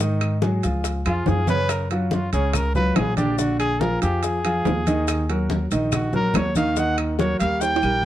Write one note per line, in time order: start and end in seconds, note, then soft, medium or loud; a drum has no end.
0.00 0.58 G#2 medium
0.00 0.35 D#3 medium
0.00 0.35 D#4 medium
0.00 0.35 D#5 medium
0.00 high bongo medium
0.00 high conga soft
0.00 maracas medium
0.21 high bongo soft
0.21 high conga soft
0.21 high timbale medium
0.21 claves medium
0.21 maracas soft
0.42 0.60 F#3 medium
0.42 0.60 F#4 medium
0.42 0.60 G#4 medium
0.42 high bongo medium
0.42 high conga medium
0.42 low timbale medium
0.42 maracas soft
0.63 1.03 C#2 medium
0.63 0.99 F3 medium
0.63 0.99 F4 medium
0.63 0.99 G#4 medium
0.63 high conga soft
0.63 high timbale medium
0.63 maracas medium
0.84 high bongo medium
0.84 high conga soft
0.84 high timbale medium
0.84 maracas medium
1.05 1.26 F2 medium
1.05 1.41 F3 medium
1.05 1.30 F4 medium
1.05 1.41 F4 medium
1.05 1.41 G#4 medium
1.05 high bongo soft
1.05 high conga soft
1.05 high timbale medium
1.05 claves medium
1.05 maracas soft
1.26 2.27 F#2 medium
1.26 1.49 G#4 medium
1.26 high bongo soft
1.26 low bongo medium
1.26 high conga medium
1.26 high timbale medium
1.26 maracas soft
1.47 1.83 C#3 medium
1.47 1.84 C#4 medium
1.47 1.73 B4 loud
1.47 1.84 C#5 medium
1.47 high bongo soft
1.47 high conga loud
1.47 low timbale medium
1.47 maracas medium
1.69 1.91 A#4 medium
1.69 high bongo medium
1.69 high conga soft
1.69 high timbale medium
1.69 claves medium
1.69 maracas medium
1.90 2.26 F#3 medium
1.90 2.07 C#4 medium
1.90 2.26 F4 medium
1.90 2.26 F#4 medium
1.90 high bongo soft
1.90 high conga soft
1.90 high timbale medium
1.90 maracas soft
2.11 2.33 F4 medium
2.11 high bongo medium
2.11 high conga medium
2.11 low timbale medium
2.11 maracas soft
2.33 2.92 C#2 medium
2.33 2.68 C#3 medium
2.33 2.68 C#4 medium
2.33 2.57 G#4 medium
2.33 2.68 C#5 medium
2.33 high conga soft
2.33 high timbale medium
2.33 maracas medium
2.53 2.75 A#4 medium
2.53 high bongo medium
2.53 high conga soft
2.53 low conga medium
2.53 high timbale medium
2.53 claves medium
2.53 maracas medium
2.75 3.10 F#3 medium
2.75 3.11 F4 medium
2.75 3.11 F#4 medium
2.75 2.98 B4 loud
2.75 high bongo soft
2.75 high conga soft
2.75 low conga medium
2.75 maracas soft
2.96 3.96 A#1 medium
2.96 3.16 G#4 medium
2.96 high bongo soft
2.96 low bongo medium
2.96 high conga medium
2.96 high timbale medium
2.96 low timbale medium
2.96 claves medium
2.96 maracas soft
3.17 3.35 D3 medium
3.17 3.35 D4 medium
3.17 3.40 G4 medium
3.17 3.35 D5 medium
3.17 high bongo soft
3.17 high conga medium
3.17 high timbale medium
3.17 maracas medium
3.38 3.73 D3 medium
3.38 3.73 D4 medium
3.38 3.59 F#4 medium
3.38 3.74 D5 medium
3.38 high bongo medium
3.38 high conga soft
3.38 maracas medium
3.60 3.82 G#4 loud
3.60 high bongo soft
3.60 high conga soft
3.60 high timbale medium
3.60 claves medium
3.60 maracas soft
3.80 3.98 F3 medium
3.80 3.98 F4 medium
3.80 3.99 G#4 medium
3.80 4.02 A#4 medium
3.80 high bongo medium
3.80 high conga medium
3.80 low timbale medium
3.80 maracas soft
4.02 4.62 F2 medium
4.02 4.37 F3 medium
4.02 4.37 F4 medium
4.02 4.25 G4 medium
4.02 4.37 G#4 medium
4.02 high conga soft
4.02 high timbale medium
4.02 maracas medium
4.23 5.51 G#4 medium
4.23 high bongo medium
4.23 high conga soft
4.23 high timbale medium
4.23 maracas medium
4.44 4.79 F3 medium
4.44 4.80 F4 medium
4.44 4.80 G#4 medium
4.44 high bongo soft
4.44 high conga soft
4.44 high timbale medium
4.44 claves medium
4.44 maracas soft
4.65 5.65 D#2 medium
4.65 high bongo soft
4.65 low bongo medium
4.65 high conga medium
4.65 low timbale medium
4.65 maracas soft
4.87 5.22 D#3 medium
4.87 5.22 D#4 medium
4.87 5.22 D#5 medium
4.87 high bongo soft
4.87 high conga medium
4.87 high timbale medium
4.87 maracas medium
5.07 high bongo medium
5.07 high conga soft
5.07 high timbale loud
5.07 claves medium
5.07 maracas medium
5.29 5.64 F#3 medium
5.29 5.64 F#4 medium
5.29 5.65 A#4 medium
5.29 high bongo soft
5.29 high conga soft
5.29 high timbale medium
5.29 maracas soft
5.50 high bongo medium
5.50 high conga loud
5.50 low timbale medium
5.50 maracas soft
5.71 6.31 A#1 medium
5.71 6.06 D#3 medium
5.71 6.07 D#4 medium
5.71 6.07 D#5 medium
5.71 high conga soft
5.71 high timbale medium
5.71 maracas medium
5.92 6.13 F#4 medium
5.92 high bongo medium
5.92 high conga soft
5.92 low conga medium
5.92 high timbale medium
5.92 claves medium
5.92 maracas medium
6.13 6.48 F#3 medium
6.13 6.49 F#4 medium
6.13 6.49 A#4 medium
6.13 6.39 A#4 loud
6.13 high bongo soft
6.13 high conga soft
6.13 low conga medium
6.13 maracas soft
6.34 7.35 D#2 medium
6.34 6.57 C#5 medium
6.34 high bongo soft
6.34 low bongo medium
6.34 high conga medium
6.34 high timbale loud
6.34 low timbale medium
6.34 claves medium
6.34 maracas soft
6.55 6.74 D#3 medium
6.55 6.74 D#4 medium
6.55 6.74 D#5 medium
6.55 6.80 F5 medium
6.55 high bongo soft
6.55 high conga medium
6.55 high timbale medium
6.55 maracas medium
6.76 7.12 D#3 medium
6.76 7.12 D#4 medium
6.76 7.12 D#5 medium
6.76 6.99 F#5 medium
6.76 high bongo medium
6.76 high conga soft
6.76 maracas medium
6.98 7.15 A#4 medium
6.98 high bongo soft
6.98 high conga soft
6.98 high timbale medium
6.98 claves medium
6.98 maracas soft
7.19 7.37 F#3 medium
7.19 7.37 F#4 medium
7.19 7.37 A#4 medium
7.19 7.39 C#5 medium
7.19 high bongo medium
7.19 high conga medium
7.19 low timbale medium
7.19 maracas soft
7.40 7.80 D#2 medium
7.40 7.76 G3 medium
7.40 7.76 G4 medium
7.40 7.76 A#4 medium
7.40 7.63 F5 medium
7.40 high conga soft
7.40 high timbale medium
7.40 maracas medium
7.61 8.05 G5 loud
7.61 high bongo medium
7.61 high conga soft
7.61 high timbale medium
7.61 maracas medium
7.76 high timbale medium
7.82 8.03 A#1 medium
7.82 8.05 G3 medium
7.82 8.05 G4 medium
7.82 8.05 A#4 medium
7.82 high bongo soft
7.82 high conga soft
7.82 claves medium
7.82 maracas soft